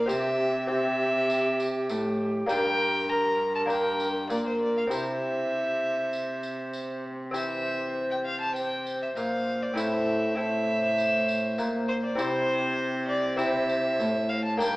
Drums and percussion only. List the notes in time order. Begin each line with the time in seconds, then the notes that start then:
0.09 tambourine
1.30 tambourine
1.60 tambourine
1.89 tambourine
2.49 tambourine
3.70 tambourine
4.00 tambourine
4.30 tambourine
4.91 tambourine
6.13 tambourine
6.43 tambourine
6.73 tambourine
7.34 tambourine
8.56 tambourine
8.86 tambourine
9.17 tambourine
9.77 tambourine
10.98 tambourine
11.28 tambourine
11.58 tambourine
12.19 tambourine
13.39 tambourine
13.69 tambourine
14.00 tambourine
14.60 tambourine